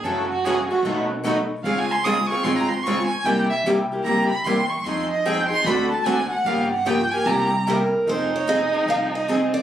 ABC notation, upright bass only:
X:1
M:4/4
L:1/8
Q:"Swing" 1/4=150
K:Fm
V:1 name="Upright bass" clef=bass
_G,,4 =B,,,4 | D,,4 A,,,4 | C,,2 C,,2 D,,2 =E,,2 | F,,4 =D,,4 |
G,,,4 C,,4 | F,,,4 C,,4 |]